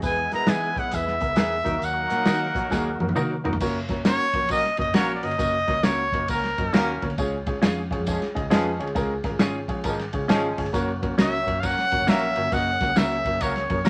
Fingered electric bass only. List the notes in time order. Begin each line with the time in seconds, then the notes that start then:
0.03 E2
0.34 B2
0.49 E3
0.76 B1
0.93 E2
1.22 C#2
1.37 E2
1.66 D#2
1.82 D#2
2.11 A#2
2.27 D#3
2.55 A#1
2.72 D#2
3.01 F#2
3.17 D#3
3.46 A#1
3.61 F#1
4.34 A#1
4.43 A#1
4.79 F#1
4.88 F#1
4.96 A#1
5.24 G1
5.39 F#1
5.68 C#2
5.84 C#2
6.12 F#1
6.29 C#2
6.59 F#2
6.73 D#2
7.03 D2
7.18 C#2
7.62 F2
7.99 F2
8.37 C#2
8.44 C#2
8.51 F2
8.80 D2
8.96 C#2
9.24 G#1
9.40 G#1
9.68 A#1
9.85 G#1
10.14 C#3
10.29 G#1
10.58 G1
10.74 F#1
11.20 C#2
11.47 F#2
11.93 F#1
12.00 F#1
12.08 A#1
12.37 G1
12.52 F#1
12.81 C#2
12.97 C#2
13.25 F#1
13.42 C#2
13.70 F#2
13.85 D#2